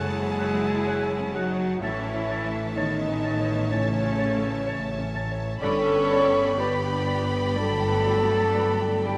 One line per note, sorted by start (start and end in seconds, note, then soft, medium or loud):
0.00 1.77 F#1 medium
0.00 0.42 C#3 medium
0.00 1.34 G#3 medium
0.00 1.83 A3 medium
0.00 1.19 C#4 medium
0.00 1.34 E4 loud
0.00 1.34 G#4 loud
0.00 0.23 C#5 medium
0.00 1.77 C#5 medium
0.00 1.77 F#5 medium
0.00 1.36 G#5 loud
0.00 1.77 A5 medium
0.23 0.74 C#5 medium
0.38 0.56 C#5 medium
0.38 0.54 F#5 medium
0.54 1.05 F#3 medium
0.87 1.37 C#5 medium
0.87 1.03 C#5 medium
0.87 1.03 F#5 medium
1.19 1.69 C#4 medium
1.34 1.81 F#3 loud
1.34 1.81 D#4 medium
1.34 1.81 F#4 loud
1.34 1.50 C#5 medium
1.34 1.81 F#5 medium
1.34 1.51 F#5 medium
1.51 1.82 C#5 medium
1.80 5.59 A1 loud
1.80 3.67 A2 medium
1.80 2.74 E3 medium
1.80 2.75 C#4 medium
1.80 2.75 E4 loud
1.80 5.59 C#5 medium
1.80 1.98 C#5 medium
1.80 5.59 E5 medium
1.80 2.77 E5 medium
1.80 5.59 A5 medium
1.80 1.99 A5 medium
2.14 2.63 C#5 medium
2.28 2.44 C#5 medium
2.28 2.46 A5 medium
2.45 2.95 A3 medium
2.74 3.71 D#3 medium
2.74 3.69 B3 medium
2.74 3.68 D#4 medium
2.74 2.93 C#5 medium
2.74 3.27 C#5 medium
2.74 3.73 D#5 medium
2.74 2.93 A5 medium
3.09 3.59 C#4 medium
3.24 3.40 C#5 medium
3.24 3.40 A5 medium
3.41 3.90 C#5 medium
3.70 5.14 C#3 medium
3.70 4.22 E3 medium
3.70 5.14 A3 loud
3.70 5.14 C#4 loud
3.70 3.87 C#5 medium
3.70 5.15 C#5 loud
3.70 3.87 A5 medium
4.04 4.54 C#5 medium
4.18 4.35 C#5 medium
4.18 4.34 A5 medium
4.35 4.86 A3 medium
4.66 4.82 C#5 medium
4.66 5.18 C#5 medium
4.66 4.83 A5 medium
4.98 5.50 C#4 medium
5.15 5.31 C#5 medium
5.15 5.31 A5 medium
5.31 5.63 C#5 medium
5.62 9.18 G1 loud
5.62 7.53 G2 medium
5.62 6.55 C#4 loud
5.62 6.55 A4 loud
5.62 6.55 C#5 loud
5.62 5.78 D5 medium
5.62 9.18 D5 medium
5.62 9.18 G5 medium
5.62 9.18 B5 medium
5.62 5.79 B5 medium
5.62 6.61 C#6 loud
5.96 6.47 B4 medium
6.10 6.28 D5 medium
6.10 6.26 B5 medium
6.27 6.78 B3 medium
6.58 7.54 B3 medium
6.58 7.54 G4 medium
6.58 7.11 B4 medium
6.58 7.56 B4 loud
6.58 6.75 D5 medium
6.58 6.74 B5 medium
6.58 7.58 B5 medium
6.91 7.43 D4 medium
7.06 7.22 D5 medium
7.06 7.22 B5 medium
7.24 7.76 B4 medium
7.55 8.09 D3 medium
7.55 9.05 F#3 loud
7.55 9.06 A3 loud
7.55 9.06 A4 loud
7.55 7.72 D5 medium
7.55 9.07 A5 loud
7.55 7.71 B5 medium
7.88 8.42 B4 medium
8.04 8.21 D5 medium
8.04 8.20 B5 medium
8.22 8.76 B3 medium
8.54 9.09 B4 medium
8.54 8.70 D5 medium
8.54 8.70 B5 medium
8.88 9.18 D4 medium
9.04 9.18 G3 medium
9.04 9.18 E4 medium
9.04 9.18 G4 loud
9.04 9.18 D5 medium
9.04 9.18 G5 medium
9.04 9.18 B5 medium